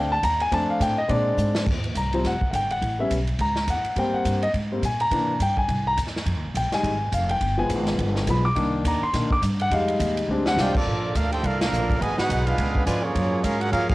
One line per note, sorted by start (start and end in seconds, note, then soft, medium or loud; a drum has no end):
0.00 0.22 D2 loud
0.00 0.10 C4 soft
0.00 0.10 D4 soft
0.00 0.12 G5 medium
0.12 0.23 A5 medium
0.23 0.51 D#2 loud
0.23 0.40 A#5 loud
0.23 kick soft
0.23 hi-hat pedal medium
0.23 ride medium
0.40 0.52 G#5 medium
0.40 ride medium
0.51 0.79 F2 medium
0.51 0.95 A3 medium
0.51 0.95 C4 soft
0.51 0.96 D4 medium
0.51 0.69 A5 medium
0.51 kick soft
0.51 ride medium
0.70 0.81 F5 medium
0.80 1.08 A2 medium
0.80 0.98 G5 medium
0.80 kick soft
0.80 hi-hat pedal medium
0.80 ride medium
0.98 1.09 D#5 medium
1.08 1.37 A#2 loud
1.08 1.63 G#3 medium
1.08 1.63 C4 medium
1.08 1.64 D4 medium
1.08 1.63 D5 medium
1.08 kick soft
1.08 ride medium
1.37 1.65 G#2 loud
1.37 hi-hat pedal medium
1.55 snare medium
1.66 1.94 D#2 medium
1.66 kick medium
1.66 crash medium
1.84 ride medium
1.95 2.23 C2 loud
1.95 2.23 A#5 medium
1.95 kick soft
1.95 hi-hat pedal medium
1.95 ride medium
2.13 2.31 F3 medium
2.13 2.31 G3 soft
2.13 2.31 C4 medium
2.13 ride medium
2.24 2.40 F1 medium
2.24 2.50 F#5 medium
2.24 kick soft
2.24 snare soft
2.24 ride medium
2.41 muted upright bass stroke soft
2.41 kick medium
2.51 2.81 G1 medium
2.51 2.53 F#5 medium
2.51 kick soft
2.51 hi-hat pedal medium
2.51 ride medium
2.55 2.71 G5 medium
2.70 2.97 F#5 medium
2.70 ride medium
2.82 3.10 A1 medium
2.82 kick soft
2.82 ride medium
2.99 3.16 G3 soft
2.99 3.17 B3 soft
2.99 3.17 C#4 medium
2.99 3.11 E5 medium
3.10 3.38 B1 medium
3.10 kick soft
3.10 hi-hat pedal medium
3.10 ride medium
3.27 ride medium
3.39 3.67 C#2 medium
3.39 3.67 A#5 medium
3.39 kick soft
3.39 ride medium
3.56 snare soft
3.67 3.83 E2 loud
3.67 3.96 F#5 medium
3.67 kick soft
3.67 hi-hat pedal medium
3.67 ride medium
3.84 muted upright bass stroke soft
3.84 ride medium
3.96 4.12 G#2 medium
3.96 4.40 G3 medium
3.96 4.41 A#3 soft
3.96 4.41 C4 medium
3.96 4.14 G5 medium
3.96 kick soft
3.96 ride medium
4.12 4.41 F#5 medium
4.12 muted upright bass stroke soft
4.25 4.53 G2 loud
4.25 kick soft
4.25 hi-hat pedal medium
4.25 ride medium
4.42 4.50 D#5 medium
4.42 ride medium
4.54 4.82 G#2 medium
4.54 kick soft
4.54 ride medium
4.72 4.82 G3 soft
4.72 4.82 A#3 soft
4.72 4.82 C4 medium
4.82 5.10 A#2 medium
4.82 5.01 G#5 medium
4.82 kick soft
4.82 hi-hat pedal medium
4.82 ride medium
5.00 5.38 A#5 loud
5.00 ride medium
5.11 5.39 C3 medium
5.11 5.32 E3 medium
5.11 5.33 A#3 soft
5.11 5.33 D4 medium
5.11 kick soft
5.11 ride medium
5.40 5.68 G2 medium
5.40 5.58 G5 medium
5.40 kick soft
5.40 hi-hat pedal medium
5.40 ride medium
5.57 5.85 G#5 medium
5.57 kick medium
5.68 5.97 C2 medium
5.68 kick soft
5.68 ride medium
5.87 5.98 A#5 loud
5.97 6.25 E2 medium
5.97 kick soft
5.97 hi-hat pedal medium
5.97 ride medium
6.07 snare soft
6.16 snare medium
6.26 6.35 F2 medium
6.26 kick soft
6.26 ride medium
6.35 6.44 D#2 medium
6.45 6.54 C2 medium
6.54 6.71 A#1 loud
6.54 6.73 G5 medium
6.54 kick soft
6.54 hi-hat pedal medium
6.54 ride medium
6.72 6.90 G3 medium
6.72 6.91 G#3 soft
6.72 6.91 D#4 medium
6.72 7.11 G#5 medium
6.72 muted upright bass stroke soft
6.72 snare soft
6.72 ride medium
6.83 7.11 G#1 medium
6.83 kick soft
6.83 ride medium
7.12 7.40 F1 loud
7.12 7.30 F5 medium
7.12 kick soft
7.12 hi-hat pedal medium
7.12 ride medium
7.29 7.57 G5 medium
7.29 ride medium
7.41 7.69 G1 medium
7.41 kick soft
7.41 ride medium
7.58 8.27 F3 soft
7.58 8.27 G#3 soft
7.58 8.27 B3 medium
7.58 7.70 G#5 medium
7.69 7.98 G#1 loud
7.69 kick soft
7.69 hi-hat pedal medium
7.69 ride medium
7.87 snare soft
7.87 ride medium
7.98 8.26 G1 loud
7.98 kick soft
7.98 ride medium
8.16 snare soft
8.27 8.55 B1 loud
8.27 8.43 F3 soft
8.27 8.44 G#3 soft
8.27 8.44 B3 medium
8.27 8.46 B5 medium
8.27 kick soft
8.27 hi-hat pedal medium
8.27 ride medium
8.45 8.82 D6 loud
8.55 8.84 C2 medium
8.55 8.99 D#3 medium
8.55 9.00 A#3 soft
8.55 9.00 D4 medium
8.55 kick soft
8.55 ride medium
8.84 9.01 D#2 loud
8.84 9.03 A#5 medium
8.84 kick soft
8.84 hi-hat pedal medium
8.84 ride medium
9.02 9.29 C6 medium
9.02 muted upright bass stroke soft
9.13 9.29 A#2 loud
9.13 9.29 D#3 soft
9.13 9.29 A#3 soft
9.13 9.30 D4 soft
9.13 kick soft
9.13 snare soft
9.13 ride medium
9.30 9.39 D6 loud
9.30 muted upright bass stroke soft
9.30 kick medium
9.42 9.70 G2 loud
9.42 kick soft
9.42 hi-hat pedal medium
9.42 ride medium
9.59 9.72 F#5 medium
9.59 ride medium
9.71 9.99 F2 medium
9.71 10.26 G3 medium
9.71 10.26 G#3 medium
9.71 10.27 D#4 medium
9.71 10.15 F5 medium
9.71 kick soft
9.71 ride medium
9.88 ride medium
9.99 10.27 D#2 loud
9.99 kick soft
9.99 hi-hat pedal medium
9.99 ride medium
10.17 ride medium
10.28 10.56 D2 loud
10.28 10.73 G3 medium
10.28 10.73 G#3 soft
10.28 10.73 C4 medium
10.28 10.73 D4 medium
10.46 10.58 F#5 loud
10.46 snare medium
10.57 10.73 C2 loud
10.57 10.74 G#3 medium
10.57 10.73 D4 medium
10.57 10.74 F4 medium
10.57 10.74 G4 medium
10.57 10.74 C5 medium
10.57 10.74 D5 medium
10.57 10.79 F5 medium
10.57 10.74 G5 loud
10.57 snare medium
10.57 hi-hat pedal medium
10.74 11.12 F3 medium
10.74 11.13 A#3 medium
10.74 11.12 D4 medium
10.74 11.13 F4 medium
10.74 11.12 A4 medium
10.74 11.13 A4 medium
10.74 11.13 D5 medium
10.74 kick medium
10.74 crash loud
10.86 11.14 A#1 medium
10.86 12.00 D3 medium
10.86 12.00 F3 medium
10.86 12.00 A#3 medium
10.86 12.00 F4 medium
10.86 kick soft
11.15 11.43 D2 medium
11.15 11.32 A3 medium
11.15 11.32 D4 medium
11.15 11.32 F4 medium
11.15 11.32 A4 medium
11.15 11.32 A#4 medium
11.15 11.32 F5 medium
11.15 kick soft
11.15 hi-hat pedal medium
11.15 ride medium
11.31 11.43 D#4 medium
11.31 11.42 G4 medium
11.31 11.43 A4 medium
11.31 11.43 C5 medium
11.31 11.43 G5 loud
11.31 ride medium
11.42 11.71 C2 loud
11.42 11.60 A3 medium
11.42 11.58 D4 medium
11.42 11.61 D4 medium
11.42 11.58 F4 medium
11.42 11.61 A4 medium
11.42 11.61 A#4 medium
11.42 11.61 F5 loud
11.42 kick soft
11.42 ride medium
11.59 11.98 A#3 medium
11.59 11.97 D4 medium
11.59 11.99 D4 medium
11.59 11.97 F4 medium
11.59 11.99 A4 medium
11.59 11.99 A#4 medium
11.59 11.99 F5 loud
11.59 snare medium
11.59 ride medium
11.72 12.00 A#1 medium
11.72 hi-hat pedal medium
11.90 kick medium
11.90 ride medium
12.00 12.17 G#1 medium
12.00 12.17 B2 medium
12.00 12.17 D#3 medium
12.00 12.58 D#3 medium
12.00 12.17 G#3 medium
12.00 12.58 G#3 medium
12.00 13.15 B3 medium
12.00 12.18 F#4 medium
12.00 12.58 F#4 medium
12.00 12.16 B4 loud
12.00 12.18 D#5 loud
12.00 12.18 G#5 loud
12.00 kick soft
12.00 ride medium
12.17 12.43 B3 loud
12.17 12.45 D#4 loud
12.17 12.45 D#4 medium
12.17 12.44 F#4 loud
12.17 12.44 G#4 medium
12.17 12.44 B4 medium
12.17 12.44 F#5 loud
12.17 muted upright bass stroke soft
12.17 snare medium
12.29 12.57 B1 medium
12.29 kick soft
12.29 hi-hat pedal medium
12.29 ride medium
12.44 12.85 G#3 medium
12.44 12.86 B3 medium
12.44 12.86 D4 medium
12.44 12.86 F4 loud
12.44 12.86 G#4 medium
12.44 12.85 B4 loud
12.44 12.86 F5 loud
12.44 ride medium
12.58 12.86 C#2 loud
12.58 13.15 D3 medium
12.58 13.15 C#4 medium
12.58 13.15 F4 medium
12.58 kick soft
12.58 ride medium
12.75 kick medium
12.86 13.14 F2 medium
12.86 13.02 B2 medium
12.86 13.01 F3 medium
12.86 13.02 G#3 medium
12.86 13.02 F4 medium
12.86 13.02 B4 medium
12.86 13.02 D5 medium
12.86 13.02 G#5 loud
12.86 kick soft
12.86 hi-hat pedal medium
12.86 ride medium
13.03 13.44 F3 medium
13.03 13.42 A#3 medium
13.03 13.44 A#3 medium
13.03 13.43 C#4 medium
13.03 13.44 F4 medium
13.03 13.42 G#4 medium
13.03 13.44 C#5 loud
13.15 13.43 F#2 loud
13.15 13.95 F#3 medium
13.15 13.95 G#3 medium
13.15 13.95 A#3 medium
13.15 13.95 F4 medium
13.15 kick soft
13.15 ride medium
13.43 13.71 G#2 loud
13.43 13.59 A#3 medium
13.43 13.60 C#4 medium
13.43 13.59 C#4 medium
13.43 13.61 F4 medium
13.43 13.59 G#4 medium
13.43 13.60 A#4 medium
13.43 13.61 F5 loud
13.43 kick soft
13.43 hi-hat pedal medium
13.43 ride medium
13.60 13.70 A#3 medium
13.60 13.70 C#4 medium
13.60 13.73 F#4 medium
13.60 13.70 G#4 medium
13.60 13.70 A#4 medium
13.60 13.72 F#5 loud
13.60 ride medium
13.71 13.95 F2 medium
13.71 13.88 A#3 medium
13.71 13.88 C#4 medium
13.71 13.88 C#4 loud
13.71 13.88 F4 loud
13.71 13.88 G#4 loud
13.71 13.88 A#4 loud
13.71 13.87 F5 loud
13.71 kick soft
13.71 ride medium
13.89 13.95 A#3 medium
13.89 13.95 C#4 loud
13.89 13.95 C#4 medium
13.89 13.95 F4 medium
13.89 13.95 G#4 loud
13.89 13.95 A#4 loud
13.89 13.95 F5 loud
13.89 kick loud
13.89 crash medium